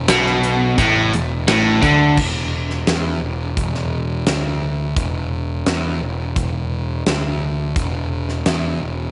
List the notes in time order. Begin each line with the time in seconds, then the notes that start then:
0.08 B1 B2, snare, closed hi-hat
0.26 snare
0.43 closed hi-hat
0.78 A1 A2, kick, closed hi-hat
1.13 E1 E2, closed hi-hat
1.47 A1 A2, snare, closed hi-hat
1.83 D2 D3, kick, closed hi-hat
2.17 E1, kick, crash
2.70 snare
2.87 E2, snare, closed hi-hat
3.22 E1
3.57 E1, kick, closed hi-hat
3.75 snare
4.27 D2, snare, closed hi-hat
4.96 E1, kick, closed hi-hat
5.66 E2, snare, closed hi-hat
6.01 E1
6.36 E1, kick, closed hi-hat
7.06 D2, snare, closed hi-hat
7.76 E1, kick, closed hi-hat
8.29 snare
8.46 E2, snare, closed hi-hat
8.81 E1